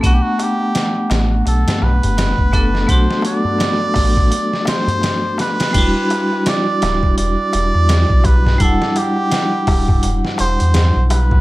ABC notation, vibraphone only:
X:1
M:4/4
L:1/8
Q:"Swing 16ths" 1/4=84
K:Em
V:1 name="Vibraphone"
[A,B,Df]6- [A,B,Df] [A,B,DA] | [F,A,DF]6- [F,A,DF] z | [G,DEF]6- [G,DEF] z | [G,DEf]6- [G,DEf] z |]